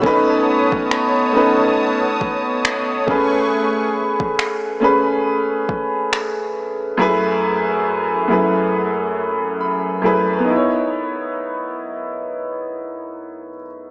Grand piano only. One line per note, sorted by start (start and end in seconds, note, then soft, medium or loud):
0.02 1.25 A3 loud
0.02 1.26 C#4 loud
0.02 1.26 D#4 loud
0.06 1.27 B4 loud
1.32 2.96 A3 medium
1.32 2.97 C#4 medium
1.32 2.98 D#4 medium
1.36 2.98 B4 medium
3.06 4.70 A3 medium
3.06 4.71 C#4 medium
3.06 4.72 G#4 medium
3.10 4.72 B4 loud
4.80 6.44 A3 medium
4.80 6.45 C#4 medium
4.80 6.45 G#4 medium
4.84 6.46 B4 loud
6.97 8.21 F#2 loud
6.97 8.21 A3 loud
6.97 8.22 E4 loud
6.97 8.22 G#4 medium
7.02 8.23 B4 loud
8.28 9.92 F#2 medium
8.28 9.92 A3 medium
8.28 9.93 E4 medium
8.28 9.94 G#4 medium
8.32 9.94 B4 medium
9.61 10.43 B5 medium
10.02 10.43 F#2 medium
10.02 10.44 A3 medium
10.02 10.44 E4 medium
10.02 10.45 G#4 medium
10.06 10.46 B4 medium
10.39 13.48 B3 medium
10.44 13.54 D#4 medium
10.50 13.60 E4 medium
10.56 13.66 C#5 medium